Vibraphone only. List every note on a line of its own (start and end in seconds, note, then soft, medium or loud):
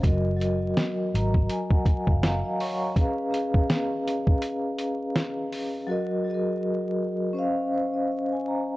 0.02 0.30 F#3 medium
0.02 0.30 F#4 medium
0.02 0.31 A#4 medium
0.07 0.32 D#5 loud
0.37 1.41 F#3 medium
0.37 1.42 F#4 medium
0.37 1.43 A#4 medium
0.42 1.44 D#5 medium
1.15 1.48 A#5 medium
1.51 1.70 G#5 medium
1.71 1.85 F#5 medium
1.89 2.07 G#5 medium
2.10 2.23 F5 medium
2.25 2.43 D#5 medium
2.25 2.44 F5 medium
2.25 2.59 A#5 medium
2.45 2.59 D#5 medium
2.60 2.94 C#5 medium
2.60 2.81 F#5 medium
2.60 2.80 C#6 medium
2.81 3.16 D#5 medium
2.81 3.16 A#5 medium
2.95 3.23 C#4 medium
2.95 3.24 G#4 medium
2.95 3.24 B4 medium
3.00 3.25 F5 loud
3.31 4.34 C#4 medium
3.31 4.35 G#4 medium
3.31 4.36 B4 medium
3.36 4.37 F5 medium
5.86 6.15 F#3 medium
5.86 6.16 F#4 medium
5.86 6.16 A#4 medium
5.91 6.17 D#5 loud
6.24 7.27 F#3 medium
6.24 7.28 F#4 medium
6.24 6.34 G#4 medium
6.30 7.30 D#5 medium
6.34 7.32 A#4 medium
7.33 8.52 C#4 medium
7.33 7.73 C5 medium
7.33 7.92 D#5 medium
7.39 8.11 F5 loud
7.74 7.93 C5 medium
7.94 8.07 D#5 medium
8.12 8.30 F5 medium
8.32 8.45 G#5 medium
8.48 8.77 A#5 medium